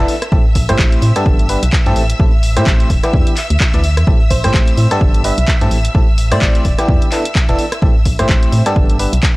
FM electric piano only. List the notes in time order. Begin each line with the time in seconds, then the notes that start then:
0.00 E3 B3 D4 E4 A4
0.32 A2 C4 E4 G4 A4
0.69 A2 C4 E4 G4 C5
1.16 G2 B3 D4 G4 A4
1.49 G2 B3 D4 G4 B4
1.86 A2 C4 E4 G4 A4
2.20 A2 C4 E4 G4 A4
2.57 A2 C4 E4 G4 C5
3.04 E3 B3 D4 E4 G4
3.74 E3 B3 D4 E4 D5
4.07 A2 C4 E4 G4 A4
4.44 A2 C4 E4 G4 C5
4.91 G2 B3 D4 G4 A4
5.24 G2 B3 D4 G4 B4
5.61 A2 C4 E4 G4 A4
5.95 A2 C4 E4 G4 A4
6.32 A2 C4 E4 G4 C5
6.79 E3 B3 D4 E4 G4
7.12 E3 B3 D4 E4 A4
7.49 E3 B3 D4 E4 A4
7.82 A2 C4 E4 G4 A4
8.19 A2 C4 E4 G4 C5
8.66 G2 B3 D4 G4 A4
8.99 G2 B3 D4 G4 B4